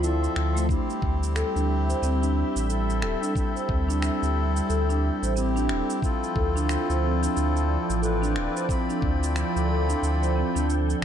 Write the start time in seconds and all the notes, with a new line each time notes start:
Already playing: D2 F3 A4 C5 D5
0.02 F3 C4 E4 A4 E5, shaker
0.24 shaker
0.36 D2, finger snap
0.56 A3, shaker
0.69 G3 C4 D4 E4 G4 G5, kick, shaker
0.90 A4, shaker
1.02 D2, kick
1.10 E5
1.23 shaker
1.36 A4, finger snap, shaker
1.56 D2 D4, shaker
1.89 C5, shaker
2.02 D2 C4, shaker
2.22 D4, shaker
2.35 D4
2.56 A1, shaker
2.69 C4 E4 A4, shaker
2.90 shaker
3.02 D1 A4, finger snap
3.22 D4, shaker
3.35 C4 E4 A4, kick, shaker
3.56 C5, shaker
3.69 D2 C4, kick
3.89 D4, shaker
4.02 D4, finger snap, shaker
4.22 D2, shaker
4.56 shaker
4.69 D2 A4, shaker
4.89 D4, shaker
5.22 A1 C5, shaker
5.36 C4 E4 G4, shaker
5.56 D4, shaker
5.69 D1 D4, finger snap
5.90 shaker
6.01 F3 C4 E4 F4 A4, kick, shaker
6.24 shaker
6.36 D2 A4, kick
6.56 D4, shaker
6.65 D5
6.69 finger snap, shaker
6.89 D2 C5, shaker
7.02 C4
7.23 D4, shaker
7.36 D2 D4, shaker
7.57 shaker
7.89 A1, shaker
8.02 C4 E4 F4 A4 B4, shaker
8.22 D4, shaker
8.36 D1, finger snap
8.56 C5, shaker
8.68 C4 E4 F4 B5, kick, shaker
8.89 D4, shaker
9.02 D2 D4, kick
9.23 shaker
9.36 finger snap, shaker
9.56 D2, shaker
9.69 A4
9.89 D4, shaker
10.02 D2, shaker
10.22 C5, shaker
10.36 C4
10.55 D2 D4, shaker
10.69 D4, shaker
10.90 shaker